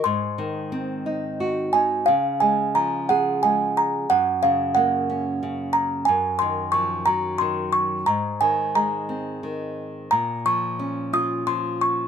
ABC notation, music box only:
X:1
M:3/4
L:1/8
Q:1/4=89
K:Db
V:1 name="Music box"
c'4 z a | f a b g a b | g f g3 b | a c' d' b c' d' |
b a b3 z | b d'2 e' c' d' |]